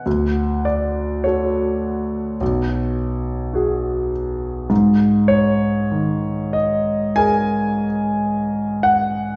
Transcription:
\new Staff \with { instrumentName = "Grand piano" } { \time 4/4 \key gis \minor \tempo 4 = 51 << { fis''8 d''8 cis''2~ cis''8 r8 | r8 cis''4 dis''8 gis''4. fis''8 | } \\ { d,4 <fis' a'>4 b,,4 <fis' gis'>4 | gis,4 dis4 <gis' ais'>2 | } >> }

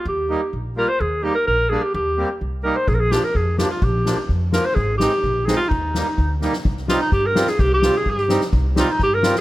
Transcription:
<<
  \new Staff \with { instrumentName = "Clarinet" } { \time 2/4 \key ees \major \tempo 4 = 127 g'4 r8 bes'16 c''16 | aes'8 g'16 bes'16 bes'8 aes'16 g'16 | g'4 r8 bes'16 c''16 | aes'32 bes'32 aes'16 g'16 bes'16 aes'8 g'16 f'16 |
g'4 r8 bes'16 c''16 | aes'8 g'4 aes'16 f'16 | ees'4. r8 | \key c \minor r8 f'16 ees'16 g'16 bes'8 aes'16 |
g'16 g'8 aes'16 g'8. r16 | r8 f'16 ees'16 g'16 bes'8 r16 | }
  \new Staff \with { instrumentName = "Accordion" } { \time 2/4 \key ees \major r8 <g bes ees'>16 r8. <g bes f'>16 r16 | r8 <g bes ees'>16 r8. <g bes d'>16 r16 | r8 <g bes c'>16 r8. <g bes ees'>16 r16 | r8 <f bes d'>16 r8. <f bes d'>16 r16 |
r8 <f bes d'>16 r8. <f bes f'>16 r16 | r8 <aes c' ees'>16 r8. <aes c' ees'>16 r16 | r8 <g bes ees'>16 r8. <g bes ees'>16 r16 | \key c \minor r8 <g c' ees'>16 r8. <g c' f'>16 r16 |
r8 <g c' f'>16 r8. <g c' ees'>16 r16 | r8 <g c' ees'>16 r8. <g c' f'>16 r16 | }
  \new Staff \with { instrumentName = "Upright bass" } { \clef bass \time 2/4 \key ees \major ees,4 bes,,4 | ees,4 bes,,4 | ees,4 c,4 | bes,,4 f,4 |
bes,,4 f,4 | aes,,4 bes,,4 | ees,4 d,4 | \key c \minor c,4 g,4 |
c,4 g,4 | c,4 g,4 | }
  \new DrumStaff \with { instrumentName = "Drums" } \drummode { \time 2/4 r4 r4 | r4 r4 | r4 r4 | bd8 sn8 bd8 sn8 |
bd8 sn8 bd8 sn8 | bd8 sn8 bd8 sn8 | bd8 sn8 bd8 sn16 sn16 | bd16 sn16 sn8 <bd sn>8 sn16 sn16 |
<bd sn>8 sn8 bd16 sn16 sn16 sn16 | bd8 sn8 <bd sn>8 sn16 sn16 | }
>>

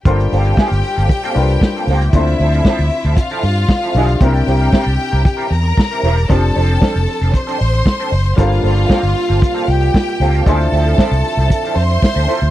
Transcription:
<<
  \new Staff \with { instrumentName = "String section" } { \time 4/4 \key g \dorian \tempo 4 = 115 <g' g''>1 | <e' e''>2 <f' f''>2 | <g' g''>2~ <g' g''>8 <bes' bes''>4. | <a' a''>2 <c'' c'''>2 |
<f' f''>2~ <f' f''>8 <g' g''>4. | <a' a''>2~ <a' a''>8 <c'' c'''>4. | }
  \new Staff \with { instrumentName = "Grand piano" } { \time 4/4 \key g \dorian <g d' f' a' bes' c''>2~ <g d' f' a' bes' c''>8 <g d' f' a' bes' b' c''>4. | <d c' d' f' c''>2.~ <d c' d' f' c''>8 <d d' e' f' g'>8 | <c c' d' e' bes'>1 | <f c' d' g' a'>1 |
<g d' f' a' bes' c''>1 | <d d' e' f' c''>1 | }
  \new Staff \with { instrumentName = "Clean electric guitar" } { \time 4/4 \key g \dorian <bes c' f' a'>16 r16 <bes c' f' a'>16 <bes c' f' a'>16 <bes c' f' a'>8 r16 <bes c' f' a'>16 r16 <bes c' f' a'>16 r8. <bes c' f' a'>16 <bes c' f' a'>16 r16 | <f c' e' a'>16 r16 <f c' e' a'>16 <f c' e' a'>16 <f c' e' a'>16 r8 <f c' e' a'>16 r16 <f c' e' a'>16 r8. <f c' e' a'>16 <f c' e' a'>8 | <g c' e' bes'>16 r16 <g c' e' bes'>16 <g c' e' bes'>16 <g c' e' bes'>16 r8 <g c' e' bes'>16 r16 <g c' e' bes'>16 r8. <g c' e' bes'>16 <g c' e' bes'>16 r16 | <f c' d' a'>16 r16 <f c' d' a'>16 <f c' d' a'>16 <f c' d' a'>16 r8 <f c' d' a'>16 r16 <f c' d' a'>16 r8. <f c' d' a'>16 r8 |
<bes c' f' a'>16 r16 <bes c' f' a'>16 <bes c' f' a'>16 <bes c' f' a'>16 r8 <bes c' f' a'>16 r16 <bes c' f' a'>16 r4 <bes c' f' a'>16 <bes c' f' a'>16 | <f c' e' a'>8 <f c' e' a'>16 <f c' e' a'>16 <f c' e' a'>16 r8 <f c' e' a'>16 r16 <f c' e' a'>16 r8. <f c' e' a'>16 <f c' e' a'>16 r16 | }
  \new Staff \with { instrumentName = "French horn section" } { \clef bass \time 4/4 \key g \dorian r1 | r1 | r1 | r1 |
<c g bes f'>1 | <d f c' e''>1 | }
  \new Staff \with { instrumentName = "Fingered electric bass" } { \clef bass \time 4/4 \key g \dorian g,,8 g,,8 r16 g,,16 r16 g,,16 r8 c,8 r8 cis,8 | d,8 d,8 r16 d,16 r16 d,16 r8 g,8 r8 b,,8 | c,8 c,8 r16 c,16 r16 c,16 r8 e,8 r8 e,,8 | f,,8 f,,8 r16 f,,16 r16 f,,16 r8 a,,8 r8 fis,,8 |
g,,8 g,,8 r16 g,,16 r16 g,,16 r8 c,8 r8 cis,8 | d,8 d,8 r16 c,16 r16 c,16 r8 f,8 r16 d,16 r16 d,16 | }
  \new DrumStaff \with { instrumentName = "Drums" } \drummode { \time 4/4 <hh bd>16 hh16 hho16 hh16 <bd sn>16 hh16 hho16 hh16 <hh bd>16 hh16 hho16 hh16 <bd sn>16 hh16 hho16 hh16 | <hh bd>16 hh16 hho16 hh16 <bd sn>16 hh16 hho16 hh16 <hh bd>16 hh16 hho16 hh16 <bd sn>16 hh16 hho16 hh16 | <hh bd>16 hh16 hho16 hh16 <bd sn>16 hh16 hho16 hh16 <hh bd>16 hh16 hho16 hh16 <bd sn>16 hh16 hho16 hh16 | <hh bd>16 hh16 hho16 hh16 <bd sn>16 hh16 hho16 hh16 <hh bd>16 hh16 hho16 hh16 <bd sn>16 hh16 hho16 hh16 |
<hh bd>16 hh16 hho16 hh16 <bd sn>16 hh16 hho16 hh16 <hh bd>16 hh16 hho16 hh16 <bd sn>16 hh16 hho16 hh16 | <hh bd>16 hh16 hho16 hh16 <bd sn>16 hh16 hho16 hh16 <hh bd>16 hh16 hho16 hh16 <bd sn>16 hh16 hho16 hh16 | }
>>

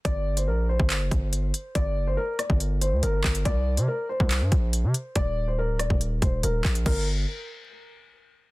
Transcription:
<<
  \new Staff \with { instrumentName = "Grand piano" } { \time 4/4 \key g \minor \tempo 4 = 141 d''8. c''16 bes'8 c''2~ c''8 | d''8. c''16 bes'8 d''8 r8 c''8 bes'4 | d''8. c''16 bes'8 c''2~ c''8 | d''8. c''16 bes'8 d''8 r8 c''8 bes'4 |
bes'8 r2. r8 | }
  \new Staff \with { instrumentName = "808-style bass" } { \clef bass \time 4/4 \key g \minor g,,4 bes,,8. g,,8 fis,,16 g,,4 r8 | g,,8 fis,,16 g,,16 r8. g,,4 d,16 g,,8 g,,8 | c,8. c16 r8. c,8 g,16 bes,,8. c16 r8 | ees,,4~ ees,,16 d,,16 ees,,16 ees,,8. ees,,8 ees,,8 bes,,8 |
g,,4 r2. | }
  \new DrumStaff \with { instrumentName = "Drums" } \drummode { \time 4/4 <hh bd>8. hh16 r8. bd16 <hc hh>8 <hh bd>8 hh8 hh8 | <hh bd>4 r8 <hh ss>16 bd16 hh8 hh8 hh8 <hc bd>16 hh16 | <hh bd>8. hh16 r8. bd16 <hc hh>8 <hh bd>8 hh8 hh8 | <hh bd>4 r8 <hh ss>16 bd16 hh8 <hh bd>8 hh8 <hc bd>16 hh16 |
<cymc bd>4 r4 r4 r4 | }
>>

